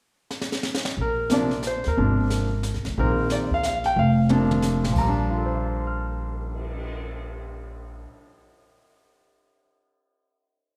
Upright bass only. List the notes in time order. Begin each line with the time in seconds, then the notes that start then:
0.97 A#1
1.86 D#2
1.98 G#1
2.75 A#1
2.86 A1
2.97 A#1
3.96 F1
4.95 A#1